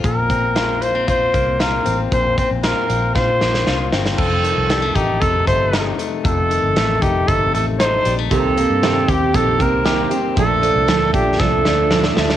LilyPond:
<<
  \new Staff \with { instrumentName = "Trumpet" } { \time 4/4 \key f \mixolydian \tempo 4 = 116 bes'4. c''8 c''4 bes'8. r16 | c''8 c''8 bes'4 c''4. r8 | a'4. g'8 a'8 c''4 r8 | a'4. g'8 a'8 a'8 c''8. r16 |
a'4. g'8 a'8 bes'4 r8 | a'4. g'8 a'4. r8 | }
  \new Staff \with { instrumentName = "Clean electric guitar" } { \time 4/4 \key f \mixolydian bes,8 c'8 f'8 bes16 c'16 f'8 bes8 f'8 c'8 | bes,8 c'8 f'8 c'8 f'8 bes8 f'8 c'8 | f,8 ees8 g16 a16 ees'8 c8 a8 ees'8 a8 | f,8 ees8 a8 ees'8 c8 a8 ees'8 g16 a16 |
c8 bes8 c'8 g'8 ees8 c'8 g'8 c'8 | bes,8 f8 a8 d'8 f8 a8 d'8 a8 | }
  \new Staff \with { instrumentName = "Steel-string acoustic guitar" } { \time 4/4 \key f \mixolydian r1 | r1 | r1 | r1 |
<c ees bes c' g'>8 <bes c' g'>8 <c ees bes c' g'>8 <bes c' g'>8 <ees bes c' g'>8 <bes c' g'>8 <c ees bes c' g'>8 <bes c' g'>8 | <bes, f a d'>8 <f a d'>8 <bes, f a d'>8 <f a d'>8 <bes, f a d'>8 <f a d'>8 <bes, f a d'>8 <f a d'>8 | }
  \new Staff \with { instrumentName = "Fingered electric bass" } { \clef bass \time 4/4 \key f \mixolydian bes,,2~ bes,,8 c,4 a,,8 | bes,,8 r16 bes,,8 r16 bes,,8 bes,8 bes,,8 c,8 g,,8 | f,,8. c,8. a,,8 f,,8 g,,4 r8 | f,,8. g,,16 a,,8 f,,8 g,,8 a,,4 bes,,8 |
c,8. g,8. ees,8 bes,,8 c,4 r8 | bes,,8. c,16 d,8 bes,,8 c,8 d,4 d,8 | }
  \new DrumStaff \with { instrumentName = "Drums" } \drummode { \time 4/4 <hh bd>8 <hh bd>8 <hh sn>8 hh8 <hh bd>8 <hh bd>8 <hh sn>8 hh8 | <hh bd>8 <hh bd>8 <hh sn>8 hh8 <bd sn>8 sn16 sn16 sn8 sn16 sn16 | <cymc bd>8 hh8 <hh sn>8 <hh bd>8 <hh bd>8 <hh bd>8 <hh sn>8 hh8 | <hh bd>8 hh8 <hh sn>8 <hh bd>8 <hh bd>8 hh8 <hh sn>8 hh8 |
<hh bd>8 hh8 <hh sn>8 <hh bd>8 <hh bd>8 <hh bd>8 <hh sn>8 hh8 | <hh bd>8 hh8 <hh sn>8 <hh bd>8 <bd sn>8 sn8 sn16 sn16 sn16 sn16 | }
>>